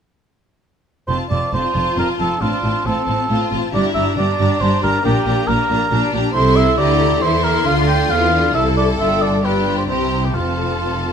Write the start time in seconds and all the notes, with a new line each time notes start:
1.07 F1 F2 C4 F4 C5 A5
1.30 F1 F2 C4 F4 D5 A5
1.52 F1 F2 C4 F4 C5 A5
1.74 F1 F2 C4 F4 A5
1.97 F1 F2 C4 F4 A#4 A5
2.19 F1 F2 C4 F4 A4 A5
2.41 A1 A2 C4 D4 F4 A5
2.63 A1 A2 C4 F4 A5
2.85 A1 A2 C4 F4 A4 A5
3.07 A1 A2 C4 F4 A5
3.29 A1 A2 C4 F4 A5
3.51 A1 A2 C4 F4 A5
3.73 G1 G2 D4 E4 G4 D5 A#5
3.95 G1 G2 D4 G4 E5 A#5
4.16 G1 G2 D4 G4 D5 A#5
4.38 G1 G2 D4 G4 A#5
4.60 G1 G2 D4 G4 C5 A#5
4.81 G1 G2 D4 G4 A#4 A#5
5.03 A#1 A#2 A#3 D4 G4 A#5
5.26 A#1 A#2 D4 G4 A#5
5.47 A#1 A#2 D4 G4 A#4 A#5
5.69 A#1 A#2 D4 G4 A#5
5.91 A#1 A#2 D4 G4 A#5
6.13 A#1 A#2 D4 G4 A#5
6.34 C2 C3 E4 A4 C5 C6
6.56 E5
6.78 D2 D3 G4 D5 A#5
7.00 A4
7.21 E2 E3 E4 C5 C6
7.44 A#4
7.66 D2 D3 D4 F4 F5
7.88 G5
8.10 E2 E3 C4 F5
8.32 D4
8.54 C2 C3 E4 A4 E5 A5
8.77 D5
8.99 G1 G2 D4 F4 E5 G5
9.22 D5
9.44 D4 F4 G4 B4 G5
9.65 G5
9.78 C5
9.88 C2 C3 C4 E4 G4 C5 A#5
10.25 G4
10.35 F1 F2 C4 F4 A4 A5